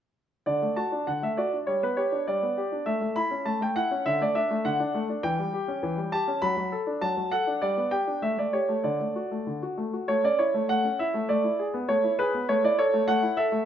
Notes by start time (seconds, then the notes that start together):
0.46 D3 D5
0.62 A3
0.76 F#4 A5
0.92 D4
1.07 D3 F#5
1.22 A3 E5
1.37 F#4 D5
1.53 D4
1.67 G3 C#5
1.83 B3 B4
1.97 G4 C#5
2.12 D4
2.27 G3 D5
2.42 B3
2.57 G4
2.72 D4
2.86 A3 E5
3.01 A3
3.16 E4 B5
3.31 C#4
3.45 A3 A5
3.61 A3 G5
3.76 E4 F#5
3.91 C#4
4.06 D3 E5
4.21 A3 D5
4.35 D4 E5
4.51 A3
4.65 D3 F#5
4.80 D4
4.95 A3
5.09 D4
5.23 E3 G5
5.39 G3
5.53 G4
5.68 C#4
5.83 E3
5.97 G3
6.12 G4 A5
6.28 C#4
6.42 F#3 B5
6.57 F#3
6.72 A4
6.87 D4
7.01 F#3 A5
7.17 F#3
7.32 A4 F#5
7.47 D4
7.62 G3 D5
7.77 B3
7.91 G4 G5
8.07 D4
8.22 A3 E5
8.38 A3 D5
8.53 G4 C#5
8.69 A3
8.84 D3 D5
9.00 A3
9.16 F#4
9.31 A3
9.47 D3
9.63 F#4
9.78 A3
9.93 F#4
10.08 A3 C#5
10.24 C#4 D5
10.39 E4 C#5
10.54 A3
10.69 A3 F#5
10.85 C#4
10.99 E4 E5
11.14 A3
11.29 A3 D5
11.44 E4
11.59 G#4
11.74 B3
11.88 A3 C#5
12.04 E4
12.19 G#4 B4
12.34 B3
12.49 A3 C#5
12.64 E4 D5
12.78 A4 C#5
12.94 A3
13.08 A3 F#5
13.23 E4
13.37 A4 E5
13.52 A3